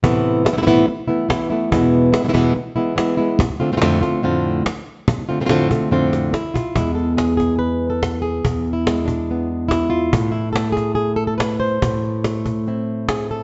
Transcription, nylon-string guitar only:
0.03 0.44 A2 medium
0.03 0.45 C3 medium
0.03 0.45 E3 medium
0.03 0.45 A3 medium
0.03 0.45 B3 medium
0.03 0.44 E4 medium
0.45 0.52 E3 soft
0.45 0.52 A3 soft
0.45 0.52 B3 soft
0.45 0.53 E4 soft
0.53 0.56 C3 soft
0.53 0.56 E3 medium
0.53 0.56 A3 soft
0.53 0.57 B3 medium
0.53 0.57 E4 medium
0.57 0.60 C3 medium
0.57 0.60 E3 medium
0.57 0.61 A3 medium
0.57 0.62 B3 medium
0.57 0.62 E4 medium
0.62 0.65 C3 medium
0.62 0.66 E3 medium
0.62 0.66 A3 medium
0.62 0.66 B3 medium
0.62 0.66 E4 medium
0.66 0.86 A2 medium
0.66 0.86 C3 medium
0.66 0.87 E3 medium
0.66 0.87 A3 medium
0.66 0.87 B3 medium
0.66 0.87 E4 medium
0.88 muted nylon-string guitar stroke medium
1.08 1.28 E3 soft
1.08 1.29 A3 soft
1.08 1.29 B3 soft
1.08 1.28 E4 medium
1.29 1.49 E3 soft
1.29 1.50 A3 soft
1.29 1.50 B3 medium
1.29 1.49 E4 medium
1.50 1.71 E3 soft
1.50 1.71 A3 soft
1.50 1.71 B3 soft
1.50 1.70 E4 medium
1.72 2.13 E2 medium
1.72 2.13 B2 medium
1.72 2.13 E3 medium
1.72 2.13 G#3 medium
1.72 2.12 B3 medium
1.72 2.11 E4 medium
2.12 2.23 E3 soft
2.12 2.24 G#3 soft
2.12 2.24 B3 medium
2.12 2.24 E4 medium
2.24 2.27 B2 medium
2.24 2.27 E3 medium
2.24 2.28 G#3 medium
2.24 2.28 B3 medium
2.24 2.28 E4 soft
2.29 2.32 B2 medium
2.29 2.32 E3 medium
2.29 2.33 G#3 medium
2.29 2.33 B3 medium
2.29 2.33 E4 medium
2.33 2.54 E2 medium
2.33 2.54 B2 medium
2.33 2.54 E3 medium
2.33 2.54 G#3 medium
2.33 2.54 B3 medium
2.33 2.55 E4 medium
2.55 muted nylon-string guitar stroke medium
2.76 2.95 E3 soft
2.76 2.96 G#3 soft
2.76 2.96 B3 soft
2.76 2.96 E4 medium
2.96 3.17 E3 medium
2.96 3.17 G#3 soft
2.96 3.17 B3 medium
2.96 3.16 E4 medium
3.17 3.39 E3 soft
3.17 3.39 G#3 soft
3.17 3.38 B3 soft
3.17 3.38 E4 medium
3.39 muted nylon-string guitar stroke medium
3.60 3.71 D3 soft
3.60 3.71 A3 soft
3.60 3.72 C4 medium
3.60 3.72 F4 medium
3.72 3.75 A2 soft
3.72 3.75 D3 medium
3.72 3.76 A3 medium
3.72 3.76 C4 soft
3.72 3.76 F4 medium
3.76 3.80 A2 medium
3.76 3.80 D3 medium
3.76 3.81 A3 medium
3.76 3.81 C4 medium
3.76 3.81 F4 medium
3.81 4.01 F2 medium
3.81 4.02 A2 medium
3.81 4.02 D3 medium
3.81 4.02 A3 medium
3.81 4.01 C4 medium
3.81 4.00 F4 medium
4.02 4.22 D3 soft
4.02 4.23 A3 soft
4.02 4.23 C4 medium
4.02 4.22 F4 medium
4.23 4.64 F2 medium
4.23 4.64 A2 medium
4.23 4.65 D3 medium
4.23 4.65 A3 medium
4.23 4.65 C4 medium
4.23 4.65 F4 medium
4.65 muted nylon-string guitar stroke medium
5.08 muted nylon-string guitar stroke medium
5.29 5.40 D3 soft
5.29 5.40 A3 soft
5.29 5.41 C4 medium
5.29 5.40 F4 soft
5.41 5.44 A2 soft
5.41 5.44 D3 soft
5.41 5.45 A3 soft
5.41 5.45 C4 soft
5.41 5.45 F4 soft
5.45 5.49 A2 medium
5.45 5.49 D3 medium
5.45 5.49 A3 medium
5.45 5.50 C4 medium
5.45 5.49 F4 medium
5.50 5.70 F2 medium
5.50 5.70 A2 medium
5.50 5.70 D3 medium
5.50 5.70 A3 medium
5.50 5.69 C4 medium
5.50 5.69 F4 medium
5.70 5.90 D3 soft
5.70 5.91 A3 soft
5.70 5.91 C4 soft
5.70 5.91 F4 soft
5.91 6.32 F2 medium
5.91 6.32 A2 medium
5.91 6.32 D3 medium
5.91 6.32 A3 medium
5.91 6.32 C4 medium
5.91 6.33 F4 medium
6.33 6.74 E4 medium
6.33 muted nylon-string guitar stroke medium
6.54 6.76 F4 medium
6.75 8.43 E2 medium
6.75 7.93 G#3 soft
6.75 8.43 B3 soft
6.75 6.95 E4 medium
6.95 7.17 A4 medium
7.17 7.36 G#4 medium
7.37 7.58 G#4 medium
7.59 7.89 B4 medium
7.90 8.22 A4 medium
8.22 8.73 G#4 medium
8.45 10.13 E2 medium
8.73 9.48 E4 medium
8.87 10.11 G#3 soft
9.05 9.89 D4 medium
9.31 10.12 B3 soft
9.69 10.12 E4 medium
9.90 10.33 F4 medium
10.14 11.81 A2 medium
10.32 10.52 E4 medium
10.53 11.79 A3 soft
10.53 10.72 A4 medium
10.72 10.94 G#4 medium
10.95 11.16 G#4 medium
11.16 11.26 A4 medium
11.27 11.37 A4 medium
11.38 11.59 B4 medium
11.60 12.86 C5 medium
11.83 13.43 A2 medium
12.25 13.43 A3 medium
12.68 13.43 C4 soft
12.68 13.43 E4 soft
13.09 13.29 G#4 medium
13.31 13.43 A4 medium

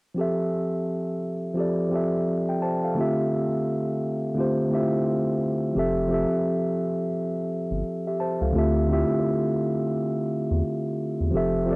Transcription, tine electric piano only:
0.14 1.15 F3 medium
0.14 1.15 C4 medium
0.14 1.16 G4 medium
0.19 1.17 A4 medium
0.19 1.18 E5 medium
1.54 1.82 F3 medium
1.54 1.83 C4 medium
1.54 1.84 G4 medium
1.59 1.85 A4 medium
1.59 1.85 D5 medium
1.89 2.64 F3 medium
1.89 2.65 C4 medium
1.89 2.65 G4 medium
1.94 2.28 A4 medium
1.94 2.29 E5 medium
2.49 2.61 G5 medium
2.62 2.83 C5 medium
2.62 2.82 A5 medium
2.84 3.17 A4 soft
2.84 3.17 F5 medium
2.95 3.94 D3 medium
2.95 3.95 A3 medium
2.95 3.95 C4 medium
2.95 3.96 F4 medium
3.00 3.97 G4 medium
3.00 3.97 E5 medium
4.34 4.62 D3 medium
4.34 4.62 A3 medium
4.34 4.63 C4 medium
4.34 4.64 F4 medium
4.39 4.64 G4 medium
4.39 4.65 C5 medium
4.68 5.43 D3 medium
4.68 5.44 A3 medium
4.68 5.44 C4 medium
4.68 4.80 E4 soft
4.73 5.45 G4 medium
4.73 5.46 E5 medium
4.79 5.48 F4 medium
5.73 6.01 F3 medium
5.73 6.02 C4 medium
5.73 6.03 G4 medium
5.78 6.03 A4 medium
5.78 6.04 E5 medium
6.08 7.08 F3 medium
6.08 7.09 C4 medium
6.08 7.09 G4 medium
6.13 7.10 A4 medium
6.13 7.11 E5 medium
8.07 8.20 G4 medium
8.07 8.20 E5 medium
8.20 8.41 C5 medium
8.20 8.40 A5 medium
8.42 8.75 A4 soft
8.42 8.75 F5 medium
8.52 8.80 D3 medium
8.52 8.81 A3 medium
8.52 8.81 C4 medium
8.52 8.82 F4 medium
8.57 8.83 G4 medium
8.57 8.83 E5 medium
8.87 9.87 D3 medium
8.87 9.88 A3 medium
8.87 9.88 C4 medium
8.87 8.98 E4 medium
8.92 9.90 G4 medium
8.92 9.90 E5 medium
8.97 9.92 F4 medium
11.31 11.59 F3 medium
11.31 11.60 C4 medium
11.31 11.61 G4 medium
11.36 11.61 A4 medium
11.36 11.62 E5 medium
11.66 11.76 F3 medium
11.66 11.76 C4 medium
11.66 11.76 G4 medium
11.70 11.76 A4 medium
11.70 11.76 D5 medium

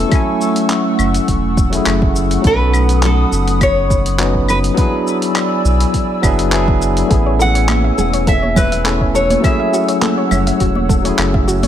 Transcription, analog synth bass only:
0.99 1.19 F#1 loud
1.28 1.79 E1 medium
1.86 2.37 F#1 medium
2.44 3.24 B1 medium
3.32 4.70 F#1 loud
5.65 5.85 B1 loud
6.23 7.03 F#1 medium
7.11 7.90 A1 loud
7.98 9.36 E1 loud
10.31 10.51 F#1 loud
10.60 11.11 E1 loud
11.18 11.68 F#1 medium

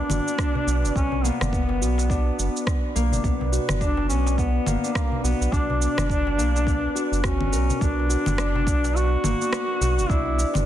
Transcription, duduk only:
0.00 0.92 D4 loud
0.95 1.25 C#4 loud
1.24 2.95 B3 medium
3.81 4.08 D4 loud
4.09 4.36 C#4 loud
4.38 4.96 B3 loud
4.94 5.23 A#3 medium
5.23 5.54 B3 loud
5.52 7.24 D4 loud
7.25 7.84 C#4 medium
7.82 8.97 D4 loud
8.96 10.11 F#4 loud
10.10 10.50 E4 loud

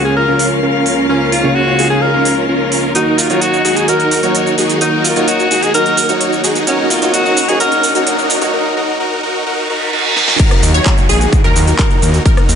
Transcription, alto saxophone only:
0.05 0.15 G#4 medium
0.16 0.49 A#4 loud
1.09 1.31 C#4 medium
1.32 1.56 F4 medium
1.55 1.89 F#4 loud
1.90 2.03 G#4 loud
2.02 2.37 A#4 loud
2.95 3.20 D#4 medium
3.18 3.43 F4 medium
3.42 3.78 F#4 loud
3.77 3.90 G#4 loud
3.89 4.23 A#4 loud
4.81 5.06 D#4 medium
5.05 5.30 F4 medium
5.28 5.64 F#4 loud
5.63 5.74 G#4 loud
5.74 6.07 A#4 loud
6.67 6.92 C#4 medium
6.90 7.15 F4 medium
7.13 7.50 F#4 loud
7.48 7.59 G#4 medium
7.60 7.93 A#4 loud

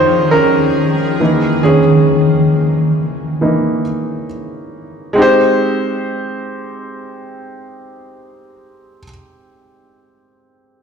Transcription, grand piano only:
0.00 0.33 C#4 medium
0.00 0.30 D#4 medium
0.00 1.22 F4 medium
0.00 1.23 G4 medium
0.00 0.31 A#4 medium
0.00 0.33 C5 medium
0.00 1.22 C#5 medium
0.00 1.22 D#5 loud
0.31 1.61 C#4 medium
0.31 1.60 A#4 loud
1.20 1.79 E3 medium
1.20 1.79 A#3 soft
1.20 1.80 D#4 medium
1.63 4.26 C#4 medium
1.63 4.25 G#4 medium
3.41 3.81 E3 soft
3.41 3.81 A#3 soft
3.41 3.82 D#4 medium
5.13 8.99 G#3 medium
5.13 9.01 C4 medium
5.18 9.04 D#4 medium
5.18 9.06 G4 medium
5.22 9.08 C5 medium

